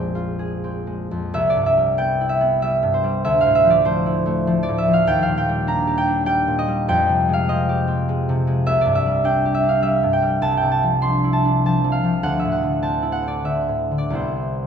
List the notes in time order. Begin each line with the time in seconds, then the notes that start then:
Already playing: A#1 F2 G#3 C4 F4 A#4 C5 D5 F5
0.15 F4
0.39 G#4
0.64 C4
0.87 G#3
1.11 F2
1.34 C2 E5
1.50 D5
1.56 G2
1.66 E5
1.77 G3
1.98 B3 G5
2.21 E4
2.29 E5
2.41 B3
2.62 G3 E5
2.83 G2
2.94 C5
3.04 G3
3.25 D2 E5
3.41 F5
3.46 A2
3.55 E5
3.65 F3
3.70 D5
3.85 A3 C5
4.06 E4
4.26 A3
4.47 F3
4.63 D5
4.69 A2
4.78 E5
4.88 F3
4.93 F5
5.07 D#2 G5
5.23 F5
5.28 A#2
5.38 G5
5.49 G3
5.67 D4 A#5
5.87 G4
5.98 G5
6.07 D4
6.26 G3 G5
6.48 A#2
6.59 D#5
6.68 G3
6.88 F2 G5
7.09 C3
7.29 G#3
7.33 F5
7.49 C4 D#5
7.69 G4
7.88 C4
8.09 G#3
8.29 C3
8.47 G#3
8.66 C2 E5
8.81 D5
8.86 G2
8.95 E5
9.06 G3
9.24 D4 G5
9.45 G4
9.54 E5
9.63 D4
9.69 F5
9.83 G3 E5
10.03 G2
10.13 G5
10.22 G3
10.42 C2 A5
10.57 G5
10.63 C3
10.72 A5
10.83 F3
11.01 D4 C6
11.24 E4
11.33 A5
11.45 D4
11.66 F3 A5
11.84 C3
11.92 F5
12.04 F3
12.23 D2 F#5
12.39 E5
12.45 A2
12.52 F#5
12.63 D3
12.82 C4 A5
13.02 E4
13.12 F#5
13.22 C4
13.28 D5
13.44 D3 E5
13.68 A2
13.91 D3
13.98 D5
14.10 C2 G3 B3 E4
14.15 C5